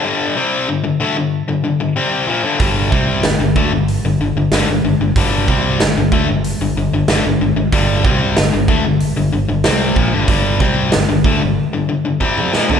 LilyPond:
<<
  \new Staff \with { instrumentName = "Overdriven electric guitar" } { \clef bass \time 4/4 \key c \lydian \tempo 4 = 94 <g, d g>8 <c g c'>8 <g, d>16 <g, d>16 <d a>16 <g, d>8 <g, d>16 <g, d>16 <g, d>16 <c g c'>8 <bes, f>16 <g, d>16 | <g, d g>8 <c g c'>8 <g, d>16 <g, d>16 <d a>16 <g, d>8 <g, d>16 <g, d>16 <g, d>16 <g, d>16 <g, d>16 <g, d>16 <g, d>16 | <g, d g>8 <c g c'>8 <g, d>16 <g, d>16 <d a>16 <g, d>8 <g, d>16 <g, d>16 <g, d>16 <g, d>16 <g, d>16 <g, d>16 <g, d>16 | <g, d g>8 <c g c'>8 <g, d>16 <g, d>16 <d a>16 <g, d>8 <g, d>16 <g, d>16 <g, d>16 <c g c'>8 <bes, f>16 <g, d>16 |
<g, d g>8 <c g c'>8 <g, d>16 <g, d>16 <d a>16 <g, d>8 <g, d>16 <g, d>16 <g, d>16 <c g c'>8 <bes, f>16 <g, d>16 | }
  \new Staff \with { instrumentName = "Fingered electric bass" } { \clef bass \time 4/4 \key c \lydian r1 | g,,8 c,8 g,,16 g,,16 d,16 g,,8 g,,16 g,,16 g,,16 g,,16 g,,16 g,,16 g,,16 | g,,8 c,8 g,,16 g,,16 d,16 g,,8 g,,16 g,,16 g,,16 g,,16 g,,16 g,,16 g,,16 | g,,8 c,8 g,,16 g,,16 d,16 g,,8 g,,16 g,,16 g,,16 c,8 bes,,16 g,,16 |
g,,8 c,8 g,,16 g,,16 d,16 g,,16 r2 | }
  \new DrumStaff \with { instrumentName = "Drums" } \drummode { \time 4/4 r4 r4 r4 r4 | <hho bd>8 bd8 <hho sn>8 bd8 hho4 <hho sn>4 | <hho bd>8 bd8 <hho sn>8 bd8 hho4 <hho sn>4 | <hho bd>8 bd8 <hho sn>8 bd8 hho4 <hho sn>8 bd8 |
<hho bd>8 bd8 <hho sn>8 bd8 r4 bd16 toml16 sn16 tomfh16 | }
>>